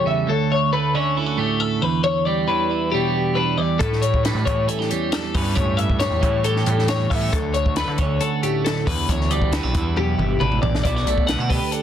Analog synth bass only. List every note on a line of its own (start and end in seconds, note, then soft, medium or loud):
3.81 4.32 A2 medium
4.35 4.45 A2 medium
4.47 4.67 A2 loud
5.35 5.55 G2 medium
5.57 6.08 G2 loud
6.11 6.21 E2 medium
6.23 6.63 A2 medium
6.67 7.08 A2 loud
7.11 7.31 A2 medium
7.33 7.84 D2 loud
7.88 7.98 D3 medium
7.99 8.19 D2 loud
8.87 9.07 E2 loud
9.10 9.60 D2 medium
9.64 9.74 B1 medium
9.75 10.16 E2 loud
10.18 10.38 G1 medium
10.41 10.60 A1 medium
10.63 10.83 B1 medium
10.85 11.05 B1 medium
11.05 11.37 B1 medium
11.39 11.60 B2 medium